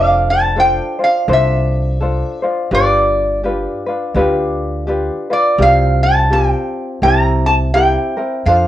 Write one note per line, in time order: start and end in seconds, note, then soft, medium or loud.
0.00 0.78 F1 medium
0.00 0.57 D4 medium
0.00 0.57 F4 medium
0.00 0.55 A4 medium
0.00 0.57 C5 medium
0.00 0.30 F5 loud
0.30 0.59 A5 medium
0.56 0.99 D4 medium
0.56 0.99 F4 medium
0.56 0.98 A4 medium
0.56 0.98 C5 medium
0.56 1.02 G5 medium
0.99 1.27 D4 soft
0.99 1.28 F4 soft
0.99 1.28 C5 soft
1.04 1.32 F5 medium
1.28 2.21 C2 medium
1.28 2.01 D4 medium
1.28 2.01 F4 medium
1.28 1.99 A4 medium
1.28 2.01 C5 medium
1.33 2.41 E5 medium
2.01 2.43 D4 medium
2.01 2.42 F4 medium
2.01 2.43 A4 medium
2.01 2.41 C5 medium
2.42 2.71 D4 soft
2.42 2.71 F4 medium
2.42 2.72 C5 medium
2.71 3.65 G1 medium
2.71 3.43 D4 medium
2.71 3.45 F4 medium
2.71 3.43 G4 medium
2.71 3.44 B4 medium
2.71 4.13 D5 loud
3.43 3.86 D4 medium
3.43 3.87 F4 medium
3.43 3.86 G4 medium
3.43 3.85 B4 medium
3.86 4.14 D4 soft
3.86 4.15 F4 soft
3.86 4.15 B4 medium
4.14 5.08 D2 medium
4.14 4.87 D4 loud
4.14 4.88 F4 medium
4.14 4.86 G4 medium
4.14 4.88 B4 loud
4.87 5.30 D4 medium
4.87 5.29 F4 medium
4.87 5.29 G4 medium
4.87 5.29 B4 medium
5.30 5.60 D4 soft
5.30 5.59 F4 soft
5.30 5.59 B4 soft
5.30 5.62 D5 medium
5.58 6.52 C2 loud
5.58 6.31 C4 medium
5.58 6.31 F4 medium
5.58 6.30 G4 medium
5.58 6.32 A#4 medium
5.58 6.03 F5 loud
6.03 6.33 A5 medium
6.30 7.02 C4 medium
6.30 7.03 F4 medium
6.30 7.01 G4 medium
6.30 7.03 A#4 medium
6.30 7.06 G5 medium
7.02 7.96 C2 medium
7.02 7.74 C4 medium
7.02 7.74 E4 medium
7.02 7.73 G4 medium
7.02 7.74 A#4 medium
7.02 7.46 A#5 medium
7.46 7.54 A5 medium
7.74 8.17 C4 medium
7.74 8.16 E4 medium
7.74 8.17 G4 medium
7.74 8.15 A#4 medium
7.74 8.46 G5 medium
8.17 8.47 C4 soft
8.17 8.47 E4 soft
8.17 8.46 A#4 medium
8.46 8.68 F2 medium
8.46 8.68 D4 medium
8.46 8.68 F4 medium
8.46 8.68 A4 medium
8.46 8.68 C5 medium
8.46 8.68 F5 medium